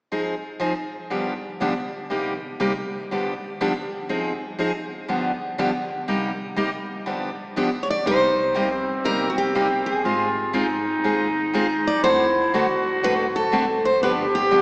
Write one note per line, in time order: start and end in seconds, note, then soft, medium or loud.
0.12 0.34 F3 soft
0.12 0.34 C4 soft
0.12 0.34 D#4 medium
0.12 0.34 G#4 medium
0.60 0.72 F3 medium
0.60 0.72 C4 medium
0.60 0.73 D#4 medium
0.60 0.73 G#4 medium
1.10 1.33 G2 soft
1.10 1.33 D3 soft
1.10 1.33 F3 soft
1.10 1.33 B3 soft
1.10 1.33 D4 soft
1.10 1.33 G4 medium
1.60 1.72 G2 medium
1.60 1.72 D3 medium
1.60 1.72 F3 medium
1.60 1.73 B3 medium
1.60 1.73 D4 medium
1.60 1.73 G4 medium
2.10 2.32 C3 soft
2.10 2.32 G3 medium
2.10 2.32 A#3 medium
2.10 2.33 D#4 medium
2.10 2.33 G4 medium
2.60 2.72 C3 medium
2.60 2.72 G3 medium
2.60 2.72 A#3 medium
2.60 2.72 D#4 medium
2.60 2.72 G4 medium
3.11 3.32 G2 soft
3.11 3.33 D3 soft
3.11 3.33 F3 soft
3.11 3.33 B3 soft
3.11 3.33 D4 medium
3.11 3.33 G4 medium
3.61 3.72 G2 medium
3.61 3.72 D3 medium
3.61 3.72 F3 medium
3.61 3.72 B3 medium
3.61 3.72 D4 medium
3.61 3.72 G4 medium
4.09 4.31 F3 medium
4.09 4.31 C4 medium
4.09 4.32 D#4 medium
4.09 4.32 G#4 medium
4.59 4.70 F3 medium
4.59 4.71 C4 medium
4.59 4.71 D#4 medium
4.59 4.71 G#4 medium
5.08 5.30 G2 soft
5.08 5.31 D3 medium
5.08 5.31 F3 soft
5.08 5.31 B3 medium
5.08 5.31 D4 medium
5.08 5.31 G4 medium
5.58 5.70 G2 medium
5.58 5.70 D3 medium
5.58 5.70 F3 medium
5.58 5.70 B3 medium
5.58 5.70 D4 medium
5.58 5.70 G4 medium
6.08 6.30 C3 medium
6.08 6.30 G3 medium
6.08 6.30 A#3 medium
6.08 6.30 D#4 medium
6.08 6.30 G4 medium
6.56 6.69 C3 medium
6.56 6.69 G3 medium
6.56 6.69 A#3 medium
6.56 6.69 D#4 medium
6.56 6.69 G4 medium
7.06 7.29 G2 soft
7.06 7.29 D3 medium
7.06 7.29 F3 medium
7.06 7.29 B3 medium
7.06 7.29 D4 medium
7.06 7.29 G4 medium
7.56 7.68 G2 medium
7.56 7.68 D3 medium
7.56 7.69 F3 medium
7.56 7.69 B3 medium
7.56 7.69 D4 medium
7.56 7.69 G4 medium
7.83 7.90 C#5 medium
7.90 8.06 D5 medium
8.05 8.85 C2 medium
8.05 8.28 C3 soft
8.05 8.28 G3 medium
8.05 8.28 A#3 medium
8.05 8.29 D#4 medium
8.05 8.58 D#4 medium
8.05 8.29 G4 medium
8.05 9.02 C5 medium
8.55 8.67 C3 medium
8.55 8.67 G3 medium
8.55 8.68 A#3 medium
8.55 10.04 C4 medium
8.55 8.68 D#4 medium
8.55 8.68 G4 medium
9.04 9.85 G1 medium
9.04 9.27 C3 soft
9.04 9.27 G3 soft
9.04 9.28 A#3 soft
9.04 9.28 D#4 medium
9.04 9.27 G4 medium
9.04 9.29 A#4 medium
9.30 9.37 F#4 medium
9.38 9.86 G4 medium
9.55 9.67 C3 medium
9.55 9.67 G3 medium
9.55 9.67 A#3 medium
9.55 9.67 D#4 medium
9.55 9.67 G4 medium
9.86 11.32 G#4 medium
10.04 10.84 G#1 medium
10.04 10.27 G#3 medium
10.04 10.27 C4 medium
10.04 10.56 F4 medium
10.04 10.27 F4 medium
10.04 10.27 G#4 medium
10.53 10.66 G#3 medium
10.53 10.66 C4 medium
10.53 12.05 D#4 medium
10.53 10.66 F4 medium
10.53 10.66 G#4 medium
11.03 11.83 D#2 medium
11.03 11.26 G#3 medium
11.03 11.26 C4 medium
11.03 11.26 F4 medium
11.03 11.27 G#4 medium
11.54 11.65 G#3 medium
11.54 11.66 C4 medium
11.54 11.66 F4 medium
11.54 11.66 G#4 medium
11.87 12.03 D5 medium
12.03 12.82 D2 medium
12.03 12.26 D3 medium
12.03 12.26 A3 medium
12.03 12.26 C4 medium
12.03 12.53 E4 medium
12.03 12.26 F#4 medium
12.03 12.26 A4 medium
12.03 12.81 C5 medium
12.54 12.65 D3 medium
12.54 12.65 A3 medium
12.54 12.65 C4 medium
12.54 13.78 F#4 medium
12.54 12.66 F#4 medium
12.54 12.66 A4 medium
13.02 13.82 A1 medium
13.02 13.25 D3 medium
13.02 13.25 A3 medium
13.02 13.25 C4 medium
13.02 13.25 F#4 medium
13.02 13.25 A4 medium
13.02 13.13 B4 medium
13.36 13.86 A4 medium
13.52 13.64 D3 medium
13.52 13.64 A3 medium
13.52 13.64 C4 medium
13.52 13.64 F#4 medium
13.52 13.64 A4 medium
13.85 14.02 C5 medium
14.01 14.62 G1 medium
14.01 14.24 D3 medium
14.01 14.24 F3 medium
14.01 14.25 B3 medium
14.01 14.25 D4 medium
14.01 14.62 G4 loud
14.01 14.25 G4 medium
14.01 14.11 B4 medium
14.35 14.62 G4 medium
14.51 14.62 D3 medium
14.51 14.62 F3 medium
14.51 14.62 B3 medium
14.51 14.62 D4 medium
14.51 14.62 G4 medium